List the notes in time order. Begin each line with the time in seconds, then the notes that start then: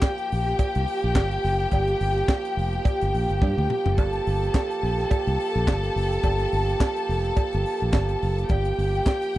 Already playing: F3 A#3 G4 G5
0.02 kick, snare, clap, closed hi-hat, cowbell
0.18 closed hi-hat
0.32 A#1, open hi-hat
0.47 snare, closed hi-hat
0.59 kick, closed hi-hat, cowbell
0.75 C2, closed hi-hat
0.88 open hi-hat
1.02 A#1, closed hi-hat
1.15 G1, kick, snare, clap, closed hi-hat, cowbell
1.31 closed hi-hat
1.44 F#1, open hi-hat
1.60 closed hi-hat
1.71 G1, kick, closed hi-hat, cowbell
1.87 closed hi-hat
2.00 G1, open hi-hat
2.18 closed hi-hat
2.28 kick, snare, clap, closed hi-hat, cowbell
2.45 closed hi-hat
2.57 F1, open hi-hat
2.73 closed hi-hat
2.85 kick, closed hi-hat, cowbell
3.01 G1, closed hi-hat
3.14 A#1, open hi-hat
3.29 G1, closed hi-hat
3.42 G2, kick, high tom, cowbell
3.57 D2, mid tom
3.70 mid tom
3.86 F#1, floor tom
3.98 G1 A4 A5, kick, closed hi-hat, cowbell
4.13 closed hi-hat
4.27 G1, open hi-hat
4.43 closed hi-hat
4.54 kick, snare, clap, closed hi-hat, cowbell
4.71 closed hi-hat
4.83 A#1, open hi-hat
4.99 snare, closed hi-hat
5.11 kick, closed hi-hat, cowbell
5.27 C2, closed hi-hat
5.40 open hi-hat
5.55 A#1, closed hi-hat
5.67 G1, kick, snare, clap, closed hi-hat, cowbell
5.83 closed hi-hat
5.96 F#1, open hi-hat
6.12 closed hi-hat
6.23 G1, kick, closed hi-hat, cowbell
6.39 closed hi-hat
6.52 G1, open hi-hat
6.69 closed hi-hat
6.80 kick, snare, clap, closed hi-hat, cowbell
6.96 closed hi-hat
7.09 F1, open hi-hat
7.24 closed hi-hat
7.36 kick, closed hi-hat, cowbell
7.52 G1, closed hi-hat
7.66 open hi-hat
7.80 A#1, closed hi-hat
7.92 G1, kick, snare, clap, closed hi-hat, cowbell
8.08 closed hi-hat
8.22 F#1, open hi-hat
8.38 closed hi-hat
8.49 G1 G4 G5, kick, closed hi-hat, cowbell
8.65 closed hi-hat
8.78 G1, open hi-hat
8.95 closed hi-hat
9.06 kick, snare, clap, closed hi-hat, cowbell
9.22 closed hi-hat